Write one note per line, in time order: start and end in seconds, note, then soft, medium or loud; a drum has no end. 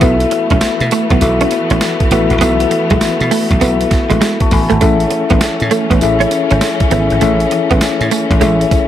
0.00 0.24 B1 loud
0.00 4.77 E3 medium
0.00 8.88 A3 medium
0.00 0.84 B3 medium
0.00 0.16 B3 medium
0.00 4.77 B3 medium
0.00 0.84 E4 medium
0.00 0.84 F#4 medium
0.00 0.84 A4 medium
0.00 0.84 E5 loud
0.00 kick loud
0.00 closed hi-hat medium
0.00 tambourine medium
0.20 closed hi-hat medium
0.31 muted clean electric guitar stroke soft
0.31 closed hi-hat medium
0.50 0.59 B1 medium
0.50 0.59 C#4 medium
0.50 kick loud
0.50 closed hi-hat medium
0.61 muted clean electric guitar stroke soft
0.61 snare loud
0.61 closed hi-hat medium
0.61 tambourine loud
0.80 0.89 B2 loud
0.80 closed hi-hat soft
0.91 1.06 A3 medium
0.91 closed hi-hat medium
0.91 tambourine medium
1.10 1.19 B1 loud
1.10 1.19 B3 medium
1.10 kick medium
1.10 closed hi-hat medium
1.21 1.44 B1 medium
1.21 1.81 B3 medium
1.21 1.81 E4 medium
1.21 1.81 F#4 medium
1.21 1.81 A4 medium
1.21 1.82 E5 medium
1.21 closed hi-hat medium
1.21 tambourine medium
1.41 1.49 C#4 medium
1.41 closed hi-hat medium
1.51 muted clean electric guitar stroke soft
1.51 closed hi-hat medium
1.51 tambourine medium
1.70 1.79 A1 medium
1.70 1.79 C#4 medium
1.70 closed hi-hat medium
1.81 snare loud
1.81 closed hi-hat medium
1.81 tambourine medium
2.00 kick medium
2.00 closed hi-hat medium
2.11 2.26 A1 loud
2.11 2.34 B3 medium
2.11 2.26 B3 medium
2.11 2.34 E4 medium
2.11 2.34 F#4 medium
2.11 2.34 A4 medium
2.11 2.35 E5 loud
2.11 closed hi-hat medium
2.11 tambourine medium
2.30 2.39 A1 medium
2.30 closed hi-hat soft
2.41 2.64 B1 loud
2.41 2.56 B3 medium
2.41 3.24 B3 medium
2.41 3.24 E4 medium
2.41 3.24 F#4 medium
2.41 3.24 A4 medium
2.41 3.24 E5 loud
2.41 closed hi-hat medium
2.41 tambourine medium
2.60 closed hi-hat medium
2.71 muted clean electric guitar stroke soft
2.71 closed hi-hat medium
2.90 2.99 B1 medium
2.90 2.99 G#3 medium
2.90 kick loud
2.90 closed hi-hat medium
3.01 muted slap bass stroke soft
3.01 snare loud
3.01 closed hi-hat medium
3.01 tambourine loud
3.20 3.29 B2 loud
3.20 closed hi-hat soft
3.31 3.46 A3 medium
3.31 open hi-hat medium
3.31 tambourine medium
3.51 3.59 B1 loud
3.51 kick loud
3.51 closed hi-hat medium
3.61 3.85 B1 loud
3.61 4.21 B3 medium
3.61 3.76 B3 medium
3.61 4.21 E4 medium
3.61 4.21 F#4 medium
3.61 4.22 A4 medium
3.61 4.22 E5 medium
3.61 closed hi-hat medium
3.61 tambourine medium
3.81 closed hi-hat medium
3.91 muted clean electric guitar stroke soft
3.91 kick loud
3.91 snare medium
3.91 closed hi-hat medium
3.91 tambourine medium
4.10 4.19 A1 medium
4.10 4.18 G#3 medium
4.10 closed hi-hat medium
4.21 4.36 G#3 medium
4.21 snare loud
4.21 closed hi-hat medium
4.21 tambourine medium
4.40 4.51 A5 medium
4.40 4.51 C#6 medium
4.40 muted clean electric guitar stroke soft
4.40 kick medium
4.40 closed hi-hat medium
4.51 4.66 A1 medium
4.51 4.71 G#5 medium
4.51 4.70 B5 medium
4.51 kick loud
4.51 open hi-hat medium
4.51 tambourine medium
4.70 4.79 G#1 loud
4.70 4.78 A3 medium
4.70 5.00 F#5 medium
4.70 5.00 A5 medium
4.70 closed hi-hat soft
4.81 5.04 A1 loud
4.81 8.88 E3 medium
4.81 4.96 A3 medium
4.81 5.64 C#4 medium
4.81 8.88 C#4 medium
4.81 5.64 E4 medium
4.81 5.64 G#4 medium
4.81 5.64 A4 medium
4.81 5.64 E5 medium
4.81 kick loud
4.81 closed hi-hat medium
4.81 tambourine medium
5.00 closed hi-hat medium
5.10 muted clean electric guitar stroke soft
5.10 closed hi-hat medium
5.30 5.39 A1 medium
5.30 5.39 B3 medium
5.30 kick loud
5.30 closed hi-hat medium
5.41 muted clean electric guitar stroke soft
5.41 snare loud
5.41 closed hi-hat medium
5.41 tambourine loud
5.60 5.70 A2 loud
5.60 closed hi-hat soft
5.71 5.86 A3 medium
5.71 closed hi-hat medium
5.71 tambourine medium
5.90 5.99 A1 loud
5.90 5.99 B3 medium
5.90 kick medium
5.90 closed hi-hat medium
6.01 6.25 A1 medium
6.01 6.61 C#4 medium
6.01 6.61 E4 medium
6.01 6.61 G#4 medium
6.01 6.61 A4 medium
6.01 6.62 E5 loud
6.01 closed hi-hat medium
6.01 tambourine medium
6.20 6.29 C#4 medium
6.20 closed hi-hat medium
6.31 muted clean electric guitar stroke soft
6.31 closed hi-hat medium
6.31 tambourine medium
6.51 6.59 G#1 medium
6.51 6.59 C#4 medium
6.51 closed hi-hat medium
6.61 snare loud
6.61 closed hi-hat medium
6.61 tambourine medium
6.80 kick medium
6.80 closed hi-hat medium
6.90 7.06 G#1 loud
6.90 7.06 B3 medium
6.90 7.14 C#4 medium
6.90 7.14 E4 medium
6.90 7.14 G#4 medium
6.90 7.14 A4 medium
6.90 7.14 E5 loud
6.90 closed hi-hat medium
6.90 tambourine medium
7.10 7.19 G#1 loud
7.10 closed hi-hat soft
7.21 7.45 A1 loud
7.21 7.36 A3 medium
7.21 8.04 C#4 medium
7.21 8.04 E4 medium
7.21 8.04 G#4 medium
7.21 8.04 A4 medium
7.21 8.04 E5 loud
7.21 closed hi-hat medium
7.21 tambourine medium
7.40 closed hi-hat medium
7.51 muted clean electric guitar stroke soft
7.51 closed hi-hat medium
7.71 7.79 A1 medium
7.71 7.79 B3 medium
7.71 kick medium
7.71 closed hi-hat medium
7.81 muted slap bass stroke medium
7.81 snare loud
7.81 closed hi-hat medium
7.81 tambourine loud
8.01 8.09 A2 loud
8.01 closed hi-hat soft
8.11 8.26 A3 medium
8.11 closed hi-hat medium
8.11 tambourine medium
8.31 8.39 A1 medium
8.31 kick loud
8.31 closed hi-hat medium
8.41 8.64 A1 loud
8.41 8.56 G#3 loud
8.41 8.88 C#4 medium
8.41 8.88 E4 medium
8.41 8.88 G#4 medium
8.41 8.88 A4 medium
8.41 8.88 E5 medium
8.41 closed hi-hat medium
8.41 tambourine medium
8.61 closed hi-hat medium
8.71 muted clean electric guitar stroke medium
8.71 kick medium
8.71 closed hi-hat medium
8.71 tambourine medium